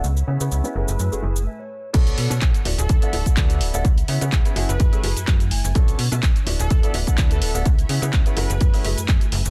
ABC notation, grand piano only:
X:1
M:4/4
L:1/16
Q:"Swing 16ths" 1/4=126
K:F#m
V:1 name="Grand piano"
z2 [B,CEGe] [B,CEGB]2 [B,CEGB] [A,CEFG] z2 [A,CEFG] z6 | [B,DFAc]6 z3 [B,DEFA] z [B,DEFA] [B,DEFA]3 [B,DEFA] | z2 [B,CEGe] [B,CEGB]2 [B,CEGB] [A,CEFG] z2 [A,CEFG] z6 | [B,CDFA]2 z6 z [B,DEFA] z [B,DEFA] B,3 [B,DEFA] |
z2 [B,CEGe] [B,CEGB]2 [B,CEGB] [A,CEFG] z2 [A,CEFG] z6 |]